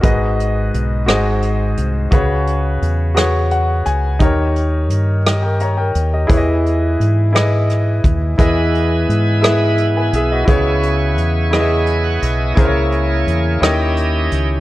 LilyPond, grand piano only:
\new Staff \with { instrumentName = "Grand piano" } { \time 6/8 \key e \lydian \tempo 4. = 57 << { r2. | r2 fis''8 gis''8 | r4. <g' dis''>16 <ais' g''>16 <cis'' ais''>16 <ais' g''>8 <g' dis''>16~ | <g' dis''>16 r2 r8. |
r2 r16 <b' gis''>16 <gis' e''>16 <fis' dis''>16~ | <fis' dis''>16 r2 r8. | r2. | } \\ { <gis, fis' gis' b' dis''>4. <gis, fis' gis' bis' dis''>4. | <cis fis' gis' b' cis''>4. <fis' gis' b' cis''>4. | <dis dis' g' ais' cis''>4. r4. | <e e' gis' b' cis'' dis''>4. <e' gis' b' dis''>4. |
<e e' gis' b' dis''>4. <e' gis' b' e''>4. | <cis e' gis' b' cis''>4. <e' gis' b' dis'' e''>4. | <cis e' gis' ais' bis' cis''>4. <dis e' g' cis'' dis''>4. | } >> }